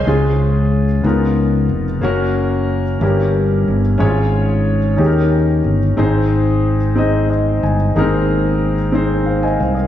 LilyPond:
<<
  \new Staff \with { instrumentName = "Grand piano" } { \time 6/8 \key des \major \tempo 4. = 61 << { des''16 r2 r8. | r2. | r2. | r2 ees''8 aes''8 |
r2 <c'' f''>16 <ees'' aes''>16 <c'' f''>16 <bes' ees''>16 | } \\ { <aes des' f' aes'>4 r8 <ces' ees' f' bes'>4 r8 | <bes des' ges' bes'>4 r8 <des' e' g' bes'>4 r8 | <des' fes' f' aes' des''>4 r8 <des' ees' g' aes' bes'>4 r8 | <c' ees' aes' c''>4 r8 <c' ees' aes' ees''>4 r8 |
<bes c' ees' aes' bes'>4 r8 <c' ees' aes' c''>4 r8 | } >> }
  \new Staff \with { instrumentName = "Grand piano" } { \clef bass \time 6/8 \key des \major des4. des4. | r4. g,4. | aes,4. ees4. | aes,4. r4. |
aes,4. r4. | }
  \new Staff \with { instrumentName = "Fingered electric bass" } { \clef bass \time 6/8 \key des \major des,4. des,4 f,,8 | ges,,4. g,,4 g,,8 | aes,,4. ees,4 g,,8 | aes,,2~ aes,,8 g,,8 |
aes,,2~ aes,,8 c,8 | }
>>